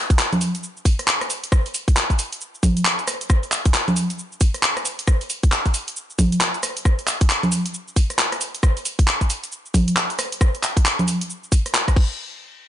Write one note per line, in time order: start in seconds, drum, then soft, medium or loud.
0.10 kick loud
0.10 closed hi-hat medium
0.10 cabasa soft
0.19 clap loud
0.19 open hi-hat medium
0.19 cabasa soft
0.33 closed hi-hat soft
0.33 high conga medium
0.33 cabasa soft
0.41 open hi-hat loud
0.41 cabasa medium
0.55 closed hi-hat medium
0.55 cabasa soft
0.63 cabasa soft
0.77 cabasa soft
0.85 kick loud
0.85 open hi-hat loud
0.85 cabasa medium
0.99 cross-stick soft
0.99 closed hi-hat medium
0.99 cabasa soft
1.08 clap loud
1.08 cabasa soft
1.21 cross-stick medium
1.21 closed hi-hat soft
1.21 cabasa soft
1.30 open hi-hat loud
1.30 cabasa medium
1.44 closed hi-hat medium
1.44 cabasa soft
1.52 kick loud
1.52 cross-stick medium
1.52 cabasa soft
1.66 open hi-hat medium
1.66 cabasa soft
1.74 open hi-hat loud
1.74 cabasa medium
1.88 kick loud
1.88 closed hi-hat medium
1.88 cabasa soft
1.97 clap loud
1.97 cabasa soft
2.10 kick medium
2.10 closed hi-hat soft
2.10 cabasa soft
2.19 open hi-hat loud
2.19 cabasa medium
2.33 closed hi-hat medium
2.33 cabasa soft
2.41 cabasa soft
2.55 cabasa soft
2.63 kick loud
2.63 open hi-hat loud
2.63 high conga medium
2.63 cabasa medium
2.77 closed hi-hat medium
2.77 cabasa soft
2.85 clap loud
2.85 cabasa soft
2.99 closed hi-hat soft
2.99 cabasa soft
3.08 cross-stick medium
3.08 open hi-hat loud
3.08 cabasa medium
3.21 closed hi-hat medium
3.21 cabasa soft
3.30 kick loud
3.30 cross-stick medium
3.30 cabasa soft
3.43 closed hi-hat soft
3.43 cabasa soft
3.52 clap medium
3.52 open hi-hat loud
3.52 cabasa medium
3.65 kick loud
3.65 closed hi-hat medium
3.65 cabasa soft
3.74 clap loud
3.74 open hi-hat medium
3.74 cabasa soft
3.88 closed hi-hat soft
3.88 high conga medium
3.88 cabasa soft
3.96 open hi-hat loud
3.96 cabasa medium
4.10 closed hi-hat medium
4.10 cabasa soft
4.19 cabasa soft
4.32 cabasa soft
4.41 kick loud
4.41 open hi-hat loud
4.41 cabasa medium
4.54 cross-stick soft
4.54 closed hi-hat medium
4.54 cabasa soft
4.63 clap loud
4.63 cabasa soft
4.77 cross-stick soft
4.77 closed hi-hat medium
4.77 cabasa soft
4.85 open hi-hat medium
4.85 cabasa medium
4.99 closed hi-hat medium
4.99 cabasa soft
5.07 kick loud
5.07 cross-stick medium
5.07 cabasa soft
5.21 open hi-hat medium
5.21 cabasa soft
5.30 open hi-hat loud
5.30 cabasa medium
5.43 kick loud
5.43 closed hi-hat medium
5.43 cabasa soft
5.52 clap loud
5.52 cabasa soft
5.66 kick medium
5.66 closed hi-hat soft
5.66 cabasa soft
5.74 open hi-hat loud
5.74 cabasa medium
5.88 closed hi-hat medium
5.88 cabasa soft
5.96 cabasa soft
6.10 cabasa soft
6.19 kick loud
6.19 open hi-hat loud
6.19 high conga medium
6.19 cabasa medium
6.32 closed hi-hat medium
6.32 cabasa soft
6.41 clap loud
6.41 cabasa soft
6.54 closed hi-hat soft
6.54 cabasa soft
6.63 cross-stick medium
6.63 open hi-hat loud
6.63 cabasa medium
6.77 closed hi-hat medium
6.77 cabasa soft
6.85 kick loud
6.85 cross-stick medium
6.85 cabasa soft
6.99 closed hi-hat soft
6.99 cabasa soft
7.07 clap medium
7.07 open hi-hat loud
7.07 cabasa medium
7.21 kick loud
7.21 closed hi-hat medium
7.21 cabasa soft
7.30 clap loud
7.30 open hi-hat medium
7.30 cabasa soft
7.43 closed hi-hat soft
7.43 high conga medium
7.43 cabasa soft
7.52 open hi-hat loud
7.52 cabasa medium
7.66 closed hi-hat medium
7.66 cabasa soft
7.74 cabasa soft
7.88 cabasa soft
7.96 kick loud
7.96 open hi-hat loud
7.96 cabasa medium
8.10 cross-stick soft
8.10 closed hi-hat medium
8.10 cabasa soft
8.19 clap loud
8.19 cabasa soft
8.32 cross-stick soft
8.32 closed hi-hat medium
8.32 cabasa soft
8.41 open hi-hat loud
8.41 cabasa medium
8.55 closed hi-hat medium
8.55 cabasa soft
8.63 kick loud
8.63 cross-stick medium
8.63 cabasa soft
8.77 open hi-hat medium
8.77 cabasa soft
8.85 open hi-hat loud
8.85 cabasa medium
8.99 kick loud
8.99 closed hi-hat medium
8.99 cabasa soft
9.08 clap loud
9.08 cabasa soft
9.21 kick medium
9.21 closed hi-hat soft
9.21 cabasa soft
9.30 open hi-hat loud
9.30 cabasa medium
9.44 closed hi-hat medium
9.44 cabasa soft
9.52 cabasa soft
9.66 cabasa soft
9.74 kick loud
9.74 open hi-hat loud
9.74 high conga medium
9.74 cabasa medium
9.88 closed hi-hat medium
9.88 cabasa soft
9.97 clap loud
9.97 cabasa soft
10.10 closed hi-hat medium
10.10 cabasa soft
10.19 cross-stick medium
10.19 open hi-hat loud
10.19 cabasa medium
10.32 closed hi-hat medium
10.32 cabasa soft
10.41 kick loud
10.41 cross-stick medium
10.41 cabasa soft
10.55 closed hi-hat soft
10.55 cabasa soft
10.63 clap medium
10.63 open hi-hat loud
10.63 cabasa medium
10.77 kick loud
10.77 closed hi-hat medium
10.77 cabasa soft
10.86 clap loud
10.86 open hi-hat medium
10.86 cabasa soft
10.99 closed hi-hat soft
10.99 high conga medium
10.99 cabasa soft
11.08 open hi-hat loud
11.08 cabasa medium
11.21 closed hi-hat medium
11.21 cabasa soft
11.30 cabasa soft
11.44 cabasa soft
11.52 kick loud
11.52 open hi-hat loud
11.52 cabasa medium
11.66 cross-stick soft
11.66 closed hi-hat medium
11.66 cabasa soft
11.75 clap loud
11.75 cabasa soft
11.88 kick medium
11.88 cross-stick medium
11.88 closed hi-hat medium
11.88 cabasa soft
11.96 kick loud
11.96 crash medium